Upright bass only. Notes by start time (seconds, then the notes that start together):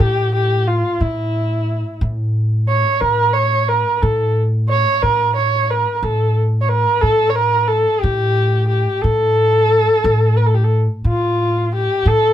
0.00 A2
1.00 A2
2.01 A2
3.01 A2
4.03 A2
5.03 A2
6.03 A2
7.03 A2
8.03 A2
9.04 A2
10.04 A2
11.04 A2
12.06 A2